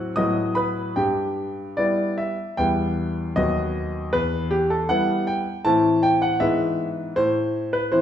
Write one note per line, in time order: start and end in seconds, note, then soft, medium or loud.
0.00 0.14 A2 medium
0.00 0.12 F#3 soft
0.00 0.12 C4 soft
0.00 0.12 F#4 soft
0.00 0.13 F#5 medium
0.00 0.16 F#6 medium
0.16 0.94 A2 medium
0.16 0.92 F#3 soft
0.16 0.93 B3 soft
0.16 0.93 F#4 soft
0.16 0.53 D#5 medium
0.16 0.56 D#6 medium
0.55 0.94 B4 medium
0.55 0.92 B5 medium
0.96 1.75 G2 soft
0.96 2.14 G4 soft
0.96 2.17 G5 medium
1.77 2.35 G3 soft
1.77 2.36 B3 soft
1.77 2.35 E4 soft
1.77 2.17 D5 medium
2.18 2.58 E5 medium
2.57 3.34 E2 soft
2.57 3.32 G3 soft
2.57 3.32 B3 soft
2.57 3.32 E4 soft
2.57 3.36 G5 medium
3.36 4.11 D#2 soft
3.36 4.09 F#3 soft
3.36 4.10 B3 soft
3.36 4.10 F#4 soft
3.36 4.13 D#5 medium
4.13 4.87 E2 soft
4.13 4.51 B4 medium
4.51 4.70 G4 medium
4.70 4.89 A4 medium
4.89 5.44 G3 soft
4.89 5.44 B3 soft
4.89 5.44 E4 soft
4.89 5.27 F#5 medium
5.27 5.65 G5 medium
5.65 6.39 A2 medium
5.65 6.37 E3 soft
5.65 6.37 C4 soft
5.65 6.37 E4 soft
5.65 6.03 A5 medium
6.03 6.22 G5 medium
6.22 6.41 F#5 medium
6.40 7.15 G#2 medium
6.40 7.13 E3 soft
6.40 7.13 B3 soft
6.40 7.13 E4 soft
6.40 6.86 E5 medium
7.16 7.90 A2 medium
7.16 7.74 C5 medium
7.73 7.92 B4 medium
7.92 8.02 E3 soft
7.92 8.02 C4 soft
7.92 8.02 E4 soft
7.92 8.02 C5 medium